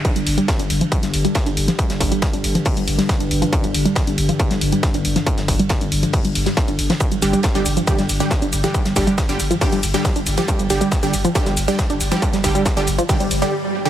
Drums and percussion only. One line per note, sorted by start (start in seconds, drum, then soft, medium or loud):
0.05 kick loud
0.05 closed hi-hat medium
0.05 ride medium
0.16 closed hi-hat medium
0.27 open hi-hat loud
0.27 ride medium
0.38 closed hi-hat medium
0.48 kick loud
0.48 snare loud
0.48 closed hi-hat medium
0.48 ride medium
0.59 closed hi-hat medium
0.70 open hi-hat loud
0.70 ride medium
0.81 closed hi-hat medium
0.92 kick loud
0.92 closed hi-hat medium
0.92 ride medium
1.03 snare soft
1.03 closed hi-hat medium
1.14 open hi-hat loud
1.14 ride medium
1.25 closed hi-hat medium
1.35 kick loud
1.35 snare loud
1.35 closed hi-hat medium
1.35 ride medium
1.46 closed hi-hat soft
1.46 ride soft
1.57 open hi-hat loud
1.57 ride medium
1.68 snare soft
1.68 closed hi-hat medium
1.79 kick loud
1.79 closed hi-hat medium
1.79 ride medium
1.90 snare medium
1.90 closed hi-hat medium
2.00 kick medium
2.00 open hi-hat loud
2.00 ride medium
2.12 closed hi-hat medium
2.22 kick loud
2.22 snare loud
2.22 closed hi-hat medium
2.22 ride medium
2.33 closed hi-hat medium
2.44 open hi-hat loud
2.44 ride medium
2.55 closed hi-hat medium
2.55 ride soft
2.65 kick loud
2.65 closed hi-hat medium
2.65 open hi-hat medium
2.77 closed hi-hat medium
2.87 open hi-hat loud
2.87 ride medium
2.99 snare medium
2.99 closed hi-hat medium
3.09 kick loud
3.09 snare loud
3.09 closed hi-hat medium
3.09 ride medium
3.20 closed hi-hat soft
3.31 open hi-hat loud
3.31 ride medium
3.42 closed hi-hat medium
3.42 ride soft
3.53 kick loud
3.53 closed hi-hat medium
3.53 ride medium
3.64 closed hi-hat medium
3.74 open hi-hat loud
3.74 ride medium
3.85 closed hi-hat medium
3.96 kick loud
3.96 snare loud
3.96 closed hi-hat medium
3.96 ride medium
4.07 closed hi-hat medium
4.18 open hi-hat loud
4.18 ride medium
4.29 closed hi-hat medium
4.39 kick loud
4.39 closed hi-hat medium
4.39 ride medium
4.51 snare soft
4.51 closed hi-hat medium
4.61 open hi-hat loud
4.61 ride medium
4.72 closed hi-hat soft
4.83 kick loud
4.83 snare loud
4.83 closed hi-hat medium
4.83 ride medium
4.94 closed hi-hat medium
4.94 ride soft
5.05 open hi-hat loud
5.05 ride medium
5.16 snare soft
5.16 closed hi-hat medium
5.27 kick loud
5.27 closed hi-hat medium
5.27 ride medium
5.38 snare medium
5.38 closed hi-hat soft
5.48 kick medium
5.48 open hi-hat loud
5.48 ride medium
5.59 closed hi-hat medium
5.69 kick loud
5.69 snare loud
5.69 closed hi-hat medium
5.69 ride medium
5.81 closed hi-hat soft
5.92 open hi-hat loud
5.92 ride medium
6.03 closed hi-hat medium
6.03 ride soft
6.13 kick loud
6.13 closed hi-hat medium
6.13 open hi-hat medium
6.25 closed hi-hat medium
6.35 open hi-hat loud
6.35 ride medium
6.46 snare medium
6.46 closed hi-hat medium
6.57 kick loud
6.57 snare medium
6.57 closed hi-hat medium
6.57 ride medium
6.68 closed hi-hat soft
6.79 open hi-hat loud
6.79 ride medium
6.90 snare loud
6.90 closed hi-hat medium
6.90 ride medium
7.00 kick loud
7.00 closed hi-hat medium
7.00 ride medium
7.00 shaker soft
7.12 closed hi-hat soft
7.12 shaker soft
7.22 open hi-hat loud
7.22 ride medium
7.22 shaker medium
7.33 closed hi-hat soft
7.33 shaker soft
7.43 kick loud
7.43 snare loud
7.43 closed hi-hat medium
7.43 ride medium
7.43 shaker soft
7.55 closed hi-hat soft
7.55 shaker soft
7.66 open hi-hat loud
7.66 ride medium
7.66 shaker medium
7.77 closed hi-hat soft
7.77 shaker soft
7.87 kick loud
7.87 closed hi-hat medium
7.87 ride medium
7.87 shaker soft
7.99 snare soft
7.99 closed hi-hat soft
7.99 shaker soft
8.09 open hi-hat loud
8.09 ride medium
8.09 shaker medium
8.20 closed hi-hat soft
8.20 shaker soft
8.31 kick loud
8.31 snare loud
8.31 closed hi-hat medium
8.31 ride medium
8.31 shaker soft
8.42 closed hi-hat soft
8.42 ride soft
8.42 shaker soft
8.52 open hi-hat loud
8.52 ride medium
8.52 shaker medium
8.64 snare soft
8.64 closed hi-hat medium
8.64 shaker soft
8.74 kick loud
8.74 closed hi-hat medium
8.74 ride medium
8.74 shaker soft
8.85 snare medium
8.85 closed hi-hat soft
8.85 shaker soft
8.96 kick medium
8.96 open hi-hat loud
8.96 ride medium
8.96 shaker medium
9.07 closed hi-hat soft
9.07 shaker soft
9.18 kick loud
9.18 snare loud
9.18 closed hi-hat medium
9.18 ride medium
9.18 shaker soft
9.29 closed hi-hat soft
9.29 shaker soft
9.40 open hi-hat loud
9.40 ride medium
9.40 shaker medium
9.51 closed hi-hat soft
9.51 ride soft
9.51 shaker soft
9.61 kick loud
9.61 closed hi-hat medium
9.61 open hi-hat medium
9.61 shaker soft
9.72 closed hi-hat medium
9.72 shaker soft
9.83 open hi-hat loud
9.83 ride medium
9.83 shaker medium
9.94 snare medium
9.94 closed hi-hat soft
9.94 shaker soft
10.05 kick loud
10.05 snare loud
10.05 closed hi-hat medium
10.05 ride medium
10.05 shaker soft
10.16 closed hi-hat soft
10.16 shaker soft
10.26 open hi-hat loud
10.26 ride medium
10.26 shaker medium
10.38 closed hi-hat medium
10.38 ride soft
10.38 shaker soft
10.48 kick loud
10.48 closed hi-hat medium
10.48 ride medium
10.48 shaker soft
10.59 closed hi-hat soft
10.59 shaker soft
10.70 open hi-hat loud
10.70 ride medium
10.70 shaker medium
10.81 closed hi-hat medium
10.81 shaker soft
10.91 kick loud
10.91 snare loud
10.91 closed hi-hat medium
10.91 ride medium
10.91 shaker soft
11.03 closed hi-hat medium
11.03 shaker soft
11.13 open hi-hat loud
11.13 ride medium
11.13 shaker medium
11.25 closed hi-hat soft
11.25 shaker soft
11.35 kick loud
11.35 closed hi-hat medium
11.35 ride medium
11.35 shaker soft
11.46 snare soft
11.46 closed hi-hat soft
11.46 shaker soft
11.57 open hi-hat loud
11.57 ride medium
11.57 shaker medium
11.68 closed hi-hat soft
11.68 shaker soft
11.79 kick loud
11.79 snare loud
11.79 closed hi-hat medium
11.79 ride medium
11.79 shaker soft
11.90 closed hi-hat soft
11.90 ride soft
11.90 shaker soft
12.01 open hi-hat loud
12.01 ride medium
12.01 shaker medium
12.12 snare soft
12.12 closed hi-hat medium
12.12 shaker soft
12.22 kick loud
12.22 closed hi-hat medium
12.22 ride medium
12.22 shaker soft
12.33 snare medium
12.33 closed hi-hat medium
12.33 shaker soft
12.44 kick medium
12.44 open hi-hat loud
12.44 shaker medium
12.55 closed hi-hat medium
12.55 shaker soft
12.65 kick loud
12.65 snare loud
12.65 closed hi-hat medium
12.65 ride medium
12.65 shaker soft
12.77 closed hi-hat medium
12.77 shaker soft
12.87 open hi-hat loud
12.87 ride medium
12.87 shaker medium
12.98 closed hi-hat medium
12.98 ride soft
12.98 shaker soft
13.09 kick loud
13.09 closed hi-hat medium
13.09 open hi-hat medium
13.09 shaker soft
13.20 closed hi-hat medium
13.20 shaker soft
13.31 open hi-hat loud
13.31 ride medium
13.31 shaker medium
13.42 snare soft
13.42 closed hi-hat medium
13.42 shaker soft